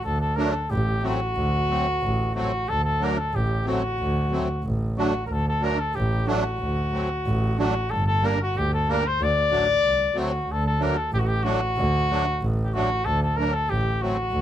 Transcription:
0.04 0.44 D2 medium
0.04 0.20 A4 medium
0.21 0.37 A4 medium
0.36 0.54 F#3 medium
0.36 0.54 A3 medium
0.36 0.54 D4 medium
0.36 0.53 A#4 medium
0.52 0.72 A4 medium
0.70 1.10 A1 loud
0.70 1.07 G4 medium
1.03 1.20 F#3 medium
1.03 1.20 A3 medium
1.03 1.20 C4 medium
1.03 2.34 F#4 loud
1.35 1.75 D2 medium
1.70 1.86 F#3 medium
1.70 1.86 A3 medium
1.70 1.87 C4 medium
2.02 2.42 A1 loud
2.35 2.52 F#3 medium
2.35 2.52 A3 medium
2.35 2.52 C4 medium
2.35 2.70 F#4 medium
2.68 3.07 D2 medium
2.68 2.83 A4 medium
2.84 3.05 A4 medium
3.00 3.17 F#3 medium
3.00 3.18 A3 medium
3.00 3.18 D4 medium
3.00 3.20 A#4 medium
3.18 3.37 A4 medium
3.33 3.73 A1 loud
3.33 3.67 G4 medium
3.65 3.82 F#3 medium
3.65 3.83 A3 medium
3.65 3.83 C4 medium
3.65 4.67 F#4 medium
3.99 4.39 D2 loud
4.31 4.48 F#3 medium
4.31 4.48 A3 medium
4.31 4.49 C4 medium
4.63 5.03 A1 medium
4.97 5.14 F#3 medium
4.97 5.14 A3 medium
4.97 5.14 D4 medium
4.97 5.25 F#4 medium
5.26 5.68 D2 medium
5.26 5.34 A#4 medium
5.32 5.48 A4 medium
5.48 5.65 A4 medium
5.61 5.78 F#3 medium
5.61 5.79 A3 medium
5.61 5.79 D4 medium
5.61 5.80 A#4 medium
5.79 5.97 A4 medium
5.94 6.34 A1 loud
5.94 6.29 G4 medium
6.27 6.44 F#3 medium
6.27 6.44 A3 medium
6.27 6.44 D4 medium
6.27 7.57 F#4 medium
6.58 6.98 D2 medium
6.93 7.09 F#3 medium
6.93 7.09 A3 medium
6.93 7.10 C4 medium
7.25 7.64 A1 loud
7.58 7.74 F#3 medium
7.58 7.74 A3 medium
7.58 7.74 D4 medium
7.58 7.92 F#4 medium
7.90 8.29 G1 loud
7.90 8.06 A4 medium
8.06 8.27 A4 medium
8.22 8.38 G3 medium
8.22 8.39 A#3 medium
8.22 8.39 D4 medium
8.22 8.40 A#4 medium
8.42 8.59 F#4 medium
8.54 8.93 D2 loud
8.54 8.72 G4 medium
8.73 8.92 A4 medium
8.88 9.04 G3 medium
8.88 9.04 A#3 medium
8.88 9.04 D4 medium
8.88 9.08 A#4 medium
9.07 9.24 C5 medium
9.19 9.39 D2 loud
9.19 10.18 D5 loud
9.50 9.81 A1 medium
9.50 9.67 F#3 medium
9.50 9.68 A3 medium
9.50 9.68 D4 medium
9.83 10.13 C2 medium
10.15 10.45 D2 medium
10.15 10.32 F#3 medium
10.15 10.32 A3 medium
10.15 10.32 C4 medium
10.19 10.53 F#4 medium
10.47 10.86 D2 loud
10.52 10.66 A4 medium
10.66 10.84 A4 medium
10.80 10.96 F#3 medium
10.80 10.96 A3 medium
10.80 10.97 D4 medium
10.80 10.98 A#4 medium
10.97 11.13 A4 medium
11.11 11.50 A1 loud
11.11 11.21 G4 medium
11.19 11.28 F#4 medium
11.27 11.45 G4 medium
11.43 11.61 F#3 medium
11.43 11.61 A3 medium
11.43 11.61 D4 medium
11.43 12.47 F#4 loud
11.76 12.15 D2 loud
12.11 12.26 F#3 medium
12.11 12.26 A3 medium
12.11 12.26 D4 medium
12.41 12.79 A1 loud
12.64 12.75 G4 medium
12.73 12.90 F#3 medium
12.73 12.90 A3 medium
12.73 12.90 D4 medium
12.73 13.07 F#4 medium
13.04 13.43 D2 loud
13.04 13.21 A4 loud
13.22 13.38 A4 medium
13.37 13.54 F#3 medium
13.37 13.54 A3 medium
13.37 13.54 D4 medium
13.37 13.55 A#4 medium
13.53 13.71 A4 medium
13.68 14.07 A1 loud
13.68 14.03 G4 medium
14.01 14.17 F#3 medium
14.01 14.17 A3 medium
14.01 14.17 C4 medium
14.01 14.41 F#4 medium
14.31 14.41 D2 medium

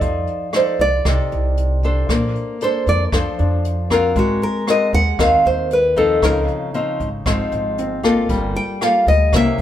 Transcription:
0.00 0.26 F2 medium
0.00 1.03 F3 medium
0.00 0.49 D#4 medium
0.00 0.49 A4 medium
0.00 0.50 D5 medium
0.00 kick medium
0.00 closed hi-hat soft
0.27 closed hi-hat soft
0.53 0.87 D#4 soft
0.53 0.87 A4 medium
0.53 0.80 C5 medium
0.53 0.87 D5 medium
0.53 cross-stick medium
0.53 closed hi-hat soft
0.79 1.03 C2 medium
0.79 1.05 D5 medium
0.79 kick soft
0.79 closed hi-hat soft
1.05 1.17 C2 medium
1.05 2.07 C3 medium
1.05 1.79 D#4 soft
1.05 1.79 A4 medium
1.05 1.80 D5 medium
1.05 kick medium
1.05 cross-stick medium
1.05 closed hi-hat soft
1.32 2.05 C2 loud
1.32 closed hi-hat soft
1.57 closed hi-hat soft
1.83 2.57 D4 medium
1.83 2.57 A4 medium
1.83 2.57 C5 medium
1.83 kick soft
1.83 closed hi-hat soft
2.09 2.33 A#1 medium
2.09 3.11 A#3 medium
2.09 kick medium
2.09 cross-stick medium
2.09 closed hi-hat soft
2.35 closed hi-hat soft
2.61 3.09 D4 soft
2.61 3.09 A4 medium
2.61 3.09 C5 medium
2.61 2.87 C5 medium
2.61 closed hi-hat soft
2.86 3.10 F2 medium
2.86 3.04 D5 medium
2.86 kick soft
2.86 closed hi-hat soft
3.12 3.24 F2 medium
3.12 4.14 F3 medium
3.12 3.86 D4 soft
3.12 3.86 A4 medium
3.12 3.87 C5 medium
3.12 kick medium
3.12 cross-stick medium
3.12 closed hi-hat soft
3.39 4.12 F2 medium
3.39 4.38 D4 soft
3.39 closed hi-hat soft
3.65 closed hi-hat soft
3.90 4.63 C4 medium
3.90 4.17 F4 medium
3.90 4.64 F#4 medium
3.90 4.64 A#4 medium
3.90 kick soft
3.90 cross-stick medium
3.90 closed hi-hat soft
4.16 4.40 G#1 medium
4.16 5.17 G#3 medium
4.16 4.42 F#4 medium
4.16 kick medium
4.16 closed hi-hat soft
4.42 4.68 A#4 medium
4.42 closed hi-hat soft
4.67 5.01 C4 soft
4.67 5.01 F#4 medium
4.67 5.01 A#4 medium
4.67 4.94 D#5 medium
4.67 cross-stick medium
4.67 closed hi-hat soft
4.93 5.17 D#2 medium
4.93 5.19 F#5 loud
4.93 kick soft
4.93 closed hi-hat soft
5.19 5.31 D#2 loud
5.19 6.20 D#3 medium
5.19 5.70 C4 medium
5.19 5.71 F#4 soft
5.19 5.71 A#4 medium
5.19 5.45 F5 medium
5.19 kick medium
5.19 cross-stick medium
5.19 closed hi-hat soft
5.45 6.19 D#2 medium
5.45 5.71 C5 medium
5.45 closed hi-hat soft
5.70 5.97 B4 medium
5.70 closed hi-hat soft
5.96 6.70 F3 medium
5.96 6.70 C4 medium
5.96 6.70 D#4 medium
5.96 6.22 A4 medium
5.96 kick soft
5.96 closed hi-hat soft
6.22 6.47 C#2 medium
6.22 7.23 C#3 medium
6.22 7.48 D#4 soft
6.22 6.40 A#4 medium
6.22 kick medium
6.22 cross-stick medium
6.22 closed hi-hat soft
6.48 closed hi-hat soft
6.74 7.08 F3 medium
6.74 7.08 C4 medium
6.74 7.08 D#4 medium
6.74 closed hi-hat soft
7.00 7.24 G#1 medium
7.00 kick soft
7.00 closed hi-hat soft
7.26 7.38 G#1 medium
7.26 8.27 G#2 medium
7.26 7.99 F3 soft
7.26 7.99 C4 medium
7.26 8.00 D#4 medium
7.26 kick medium
7.26 cross-stick medium
7.26 closed hi-hat soft
7.52 8.25 G#1 medium
7.52 closed hi-hat soft
7.78 8.52 C4 soft
7.78 closed hi-hat soft
8.03 8.77 A#3 medium
8.03 8.77 F4 medium
8.03 8.77 A4 medium
8.03 kick soft
8.03 cross-stick medium
8.03 closed hi-hat soft
8.29 8.53 G1 medium
8.29 9.30 G3 medium
8.29 kick medium
8.29 closed hi-hat soft
8.55 8.81 G5 medium
8.55 closed hi-hat soft
8.81 9.14 A#3 soft
8.81 9.15 F4 medium
8.81 9.15 A4 medium
8.81 9.07 F5 medium
8.81 cross-stick medium
8.81 closed hi-hat soft
9.06 9.31 D2 medium
9.06 9.33 D#5 medium
9.06 kick soft
9.06 closed hi-hat soft
9.33 9.45 C2 loud
9.33 9.62 C3 medium
9.33 9.62 A#3 medium
9.33 9.62 C#4 medium
9.33 9.62 E4 medium
9.33 9.60 E5 loud
9.33 kick medium
9.33 cross-stick medium
9.33 closed hi-hat soft
9.58 9.62 G2 loud

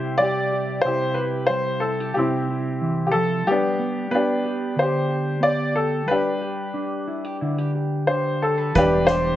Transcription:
0.00 0.80 C3 medium
0.00 0.19 G3 soft
0.00 0.19 E4 soft
0.00 0.82 E4 medium
0.00 0.21 G4 medium
0.00 0.52 G4 soft
0.00 0.20 C5 medium
0.18 1.49 G3 soft
0.18 0.81 E4 soft
0.18 0.86 D5 medium
0.22 0.85 G4 medium
0.52 1.17 G4 soft
0.81 2.15 C3 soft
0.81 1.17 C5 medium
0.86 2.12 E4 medium
0.86 2.12 G4 medium
1.14 1.82 G4 soft
1.14 1.49 B4 medium
1.47 3.47 G3 soft
1.47 1.82 C5 medium
1.80 2.00 E4 soft
1.80 2.15 A4 medium
2.00 3.47 G4 soft
2.14 3.43 C3 medium
2.14 2.49 E4 soft
2.14 3.05 G4 medium
2.18 3.44 C4 soft
2.18 3.44 E4 soft
2.50 3.43 E4 soft
2.81 3.14 E3 soft
3.07 3.14 G4 soft
3.11 3.47 F3 soft
3.11 3.46 A4 medium
3.47 6.06 G3 soft
3.47 4.75 B3 medium
3.47 4.13 D4 medium
3.47 4.14 G4 medium
3.79 4.10 B3 soft
4.11 5.40 B3 soft
4.11 5.40 D4 medium
4.11 4.79 B4 medium
4.15 4.81 G4 soft
4.45 4.77 G4 soft
4.76 6.04 D3 soft
4.76 5.08 G4 medium
4.76 5.46 C5 medium
4.82 6.07 G4 soft
5.08 5.40 G4 soft
5.40 6.06 B3 soft
5.40 5.75 G4 soft
5.40 5.73 D5 medium
5.75 6.41 G4 soft
5.75 6.09 A4 medium
6.06 8.75 G3 soft
6.06 8.03 B4 medium
6.11 8.05 D4 soft
6.11 8.05 G4 soft
6.41 7.07 G4 soft
6.74 8.07 D4 soft
7.08 7.25 E4 soft
7.25 7.41 G4 soft
7.41 8.75 D3 medium
7.41 7.58 E4 soft
7.58 7.74 G4 soft
7.75 8.08 G4 soft
8.07 8.71 D4 soft
8.07 8.71 G4 soft
8.07 8.42 C5 medium
8.42 8.76 A4 medium
8.42 8.58 A4 soft
8.58 8.74 B4 soft
8.75 9.36 E1 medium
8.75 9.36 E3 medium
8.75 9.36 G3 soft
8.75 9.08 D4 soft
8.75 9.36 D4 medium
8.75 9.36 G4 soft
8.75 9.36 G4 medium
8.75 9.09 B4 medium
8.75 kick medium
8.75 closed hi-hat medium
9.07 9.36 D4 medium
9.07 9.36 C5 medium
9.07 closed hi-hat soft

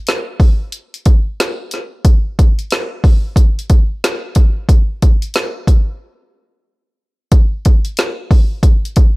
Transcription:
0.07 snare medium
0.07 closed hi-hat medium
0.40 kick medium
0.40 open hi-hat soft
0.72 closed hi-hat medium
0.94 closed hi-hat soft
1.05 kick medium
1.05 closed hi-hat medium
1.40 snare loud
1.40 closed hi-hat medium
1.71 snare soft
1.71 closed hi-hat medium
2.05 kick loud
2.05 closed hi-hat medium
2.39 kick medium
2.39 closed hi-hat medium
2.59 closed hi-hat soft
2.71 snare loud
2.71 closed hi-hat medium
3.04 kick loud
3.04 open hi-hat medium
3.36 kick medium
3.36 closed hi-hat medium
3.59 closed hi-hat medium
3.70 kick medium
3.70 closed hi-hat medium
4.04 snare loud
4.04 closed hi-hat medium
4.35 kick medium
4.35 closed hi-hat medium
4.69 kick loud
4.69 closed hi-hat medium
5.02 kick medium
5.02 closed hi-hat medium
5.22 closed hi-hat medium
5.34 snare loud
5.34 closed hi-hat medium
5.67 kick medium
5.67 closed hi-hat medium
7.32 kick loud
7.32 closed hi-hat medium
7.65 kick medium
7.65 closed hi-hat medium
7.85 closed hi-hat medium
7.97 snare loud
7.97 closed hi-hat medium
8.31 kick medium
8.31 open hi-hat soft
8.63 kick medium
8.63 closed hi-hat medium
8.85 closed hi-hat soft
8.96 kick loud
8.96 closed hi-hat medium

